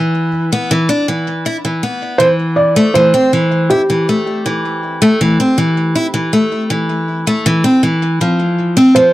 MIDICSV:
0, 0, Header, 1, 3, 480
1, 0, Start_track
1, 0, Tempo, 750000
1, 1411, Time_signature, 4, 2, 24, 8
1, 5844, End_track
2, 0, Start_track
2, 0, Title_t, "Felt piano"
2, 0, Program_c, 0, 0
2, 0, Note_on_c, 0, 71, 93
2, 174, Note_off_c, 0, 71, 0
2, 1397, Note_on_c, 0, 72, 115
2, 1453, Note_off_c, 0, 72, 0
2, 1639, Note_on_c, 0, 74, 87
2, 1883, Note_on_c, 0, 72, 97
2, 1892, Note_off_c, 0, 74, 0
2, 2366, Note_on_c, 0, 67, 86
2, 2381, Note_off_c, 0, 72, 0
2, 4743, Note_off_c, 0, 67, 0
2, 5727, Note_on_c, 0, 72, 89
2, 5844, Note_off_c, 0, 72, 0
2, 5844, End_track
3, 0, Start_track
3, 0, Title_t, "Steel-string acoustic guitar"
3, 0, Program_c, 1, 25
3, 0, Note_on_c, 1, 52, 79
3, 319, Note_off_c, 1, 52, 0
3, 336, Note_on_c, 1, 59, 92
3, 447, Note_off_c, 1, 59, 0
3, 453, Note_on_c, 1, 52, 97
3, 560, Note_off_c, 1, 52, 0
3, 569, Note_on_c, 1, 62, 91
3, 678, Note_off_c, 1, 62, 0
3, 693, Note_on_c, 1, 52, 64
3, 920, Note_off_c, 1, 52, 0
3, 934, Note_on_c, 1, 64, 81
3, 1001, Note_off_c, 1, 64, 0
3, 1054, Note_on_c, 1, 52, 67
3, 1160, Note_off_c, 1, 52, 0
3, 1171, Note_on_c, 1, 59, 64
3, 1399, Note_off_c, 1, 59, 0
3, 1407, Note_on_c, 1, 52, 75
3, 1757, Note_off_c, 1, 52, 0
3, 1768, Note_on_c, 1, 57, 94
3, 1883, Note_off_c, 1, 57, 0
3, 1890, Note_on_c, 1, 52, 93
3, 1998, Note_off_c, 1, 52, 0
3, 2008, Note_on_c, 1, 60, 95
3, 2117, Note_off_c, 1, 60, 0
3, 2131, Note_on_c, 1, 52, 73
3, 2359, Note_off_c, 1, 52, 0
3, 2371, Note_on_c, 1, 64, 78
3, 2439, Note_off_c, 1, 64, 0
3, 2494, Note_on_c, 1, 52, 68
3, 2600, Note_off_c, 1, 52, 0
3, 2617, Note_on_c, 1, 57, 68
3, 2842, Note_off_c, 1, 57, 0
3, 2852, Note_on_c, 1, 52, 73
3, 3200, Note_off_c, 1, 52, 0
3, 3211, Note_on_c, 1, 57, 95
3, 3325, Note_off_c, 1, 57, 0
3, 3333, Note_on_c, 1, 52, 91
3, 3440, Note_off_c, 1, 52, 0
3, 3455, Note_on_c, 1, 60, 88
3, 3561, Note_off_c, 1, 60, 0
3, 3570, Note_on_c, 1, 52, 73
3, 3798, Note_off_c, 1, 52, 0
3, 3811, Note_on_c, 1, 64, 78
3, 3879, Note_off_c, 1, 64, 0
3, 3928, Note_on_c, 1, 52, 70
3, 4037, Note_off_c, 1, 52, 0
3, 4051, Note_on_c, 1, 57, 69
3, 4279, Note_off_c, 1, 57, 0
3, 4289, Note_on_c, 1, 52, 75
3, 4638, Note_off_c, 1, 52, 0
3, 4654, Note_on_c, 1, 57, 86
3, 4766, Note_off_c, 1, 57, 0
3, 4774, Note_on_c, 1, 52, 93
3, 4880, Note_off_c, 1, 52, 0
3, 4890, Note_on_c, 1, 60, 93
3, 4999, Note_off_c, 1, 60, 0
3, 5011, Note_on_c, 1, 52, 71
3, 5239, Note_off_c, 1, 52, 0
3, 5255, Note_on_c, 1, 53, 74
3, 5601, Note_off_c, 1, 53, 0
3, 5611, Note_on_c, 1, 60, 94
3, 5725, Note_off_c, 1, 60, 0
3, 5732, Note_on_c, 1, 53, 98
3, 5839, Note_off_c, 1, 53, 0
3, 5844, End_track
0, 0, End_of_file